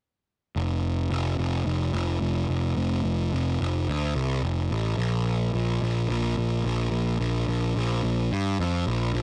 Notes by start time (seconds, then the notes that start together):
0.56 F1
1.10 F1
1.38 F1
1.66 F1
1.93 F1
2.20 F1
2.49 F1
2.76 F1
3.04 F1
3.33 F1
3.61 F1
3.88 D2
4.15 C2
4.43 F1
4.71 A1
4.97 A#1
5.54 A#1
5.82 A#1
6.10 A#1
6.37 A#1
6.65 A#1
6.91 A#1
7.20 A#1
7.48 A#1
7.76 A#1
8.04 A#1
8.32 G2
8.59 F2
8.87 A#1
9.14 A#1